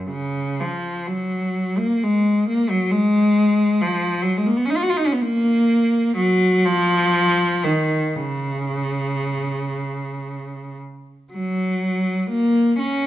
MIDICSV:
0, 0, Header, 1, 2, 480
1, 0, Start_track
1, 0, Key_signature, 6, "major"
1, 0, Tempo, 967742
1, 773, Tempo, 909091
1, 1262, Time_signature, 6, 3, 24, 8
1, 2213, Tempo, 952381
1, 3653, Tempo, 1013514
1, 5093, Tempo, 1125704
1, 5573, Tempo, 972447
1, 6441, End_track
2, 0, Start_track
2, 0, Title_t, "Cello"
2, 0, Program_c, 0, 42
2, 51, Note_on_c, 0, 49, 60
2, 290, Note_off_c, 0, 49, 0
2, 297, Note_on_c, 0, 53, 58
2, 532, Note_on_c, 0, 54, 60
2, 536, Note_off_c, 0, 53, 0
2, 890, Note_on_c, 0, 58, 69
2, 896, Note_off_c, 0, 54, 0
2, 1017, Note_off_c, 0, 58, 0
2, 1024, Note_on_c, 0, 56, 71
2, 1263, Note_off_c, 0, 56, 0
2, 1264, Note_on_c, 0, 58, 69
2, 1375, Note_on_c, 0, 54, 68
2, 1378, Note_off_c, 0, 58, 0
2, 1488, Note_on_c, 0, 56, 78
2, 1494, Note_off_c, 0, 54, 0
2, 1963, Note_on_c, 0, 53, 74
2, 1966, Note_off_c, 0, 56, 0
2, 2180, Note_on_c, 0, 54, 69
2, 2186, Note_off_c, 0, 53, 0
2, 2250, Note_off_c, 0, 54, 0
2, 2258, Note_on_c, 0, 56, 64
2, 2302, Note_on_c, 0, 58, 65
2, 2308, Note_off_c, 0, 56, 0
2, 2348, Note_off_c, 0, 58, 0
2, 2356, Note_on_c, 0, 59, 65
2, 2391, Note_off_c, 0, 59, 0
2, 2400, Note_on_c, 0, 61, 65
2, 2421, Note_on_c, 0, 63, 67
2, 2428, Note_off_c, 0, 61, 0
2, 2453, Note_off_c, 0, 63, 0
2, 2453, Note_on_c, 0, 65, 65
2, 2486, Note_off_c, 0, 65, 0
2, 2487, Note_on_c, 0, 66, 69
2, 2520, Note_on_c, 0, 65, 65
2, 2521, Note_off_c, 0, 66, 0
2, 2557, Note_on_c, 0, 63, 70
2, 2559, Note_off_c, 0, 65, 0
2, 2600, Note_off_c, 0, 63, 0
2, 2606, Note_on_c, 0, 61, 67
2, 2636, Note_on_c, 0, 59, 66
2, 2648, Note_off_c, 0, 61, 0
2, 2681, Note_on_c, 0, 58, 89
2, 2686, Note_off_c, 0, 59, 0
2, 3160, Note_off_c, 0, 58, 0
2, 3162, Note_on_c, 0, 54, 84
2, 3401, Note_off_c, 0, 54, 0
2, 3406, Note_on_c, 0, 53, 92
2, 3889, Note_off_c, 0, 53, 0
2, 3889, Note_on_c, 0, 51, 75
2, 4128, Note_off_c, 0, 51, 0
2, 4133, Note_on_c, 0, 49, 68
2, 5342, Note_off_c, 0, 49, 0
2, 5582, Note_on_c, 0, 54, 68
2, 6045, Note_off_c, 0, 54, 0
2, 6066, Note_on_c, 0, 58, 68
2, 6300, Note_off_c, 0, 58, 0
2, 6304, Note_on_c, 0, 61, 76
2, 6441, Note_off_c, 0, 61, 0
2, 6441, End_track
0, 0, End_of_file